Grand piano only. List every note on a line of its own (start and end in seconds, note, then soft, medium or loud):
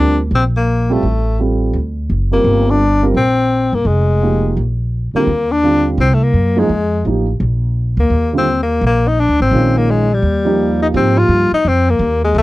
0.00 0.17 G3 soft
0.00 0.17 C4 soft
0.00 0.17 F4 soft
0.00 0.18 A#4 soft
0.90 1.02 G3 medium
0.90 1.02 C4 medium
0.90 1.02 F4 medium
0.90 1.02 A4 medium
1.39 1.74 G3 soft
1.39 1.75 C4 soft
1.39 1.75 F4 soft
1.39 1.75 A4 soft
2.31 2.77 G3 medium
2.31 2.78 C4 medium
2.31 2.78 F4 medium
2.31 2.78 A#4 medium
3.02 3.14 G3 medium
3.02 3.14 C4 medium
3.02 3.14 F4 medium
3.02 3.15 A#4 medium
4.22 4.57 F3 soft
4.22 4.57 A#3 soft
4.22 4.58 D#4 soft
4.22 4.58 G4 soft
5.15 5.26 D3 soft
5.15 5.27 G3 soft
5.15 5.27 C4 soft
5.15 5.27 F4 medium
5.63 5.99 D3 soft
5.63 5.99 G3 soft
5.63 5.99 C4 soft
5.63 5.99 F4 medium
6.57 6.68 F3 medium
6.57 6.68 A#3 soft
6.57 6.69 D#4 medium
6.57 6.69 G#4 medium
7.06 7.25 F3 soft
7.06 7.25 A#3 soft
7.06 7.26 D#4 soft
7.06 7.26 G4 medium
8.33 8.45 D3 medium
8.33 8.45 G3 soft
8.33 8.46 C4 soft
8.33 8.46 F4 medium
9.53 10.06 D#3 medium
9.53 10.06 G#3 soft
9.53 10.06 C#4 soft
9.53 10.06 F4 medium
10.45 10.91 F3 medium
10.45 10.91 A#3 medium
10.45 10.92 D#4 medium
10.45 10.92 G4 medium
10.94 11.47 F3 soft
10.94 11.47 A#3 soft
10.94 11.47 D#4 soft
10.94 11.47 G4 medium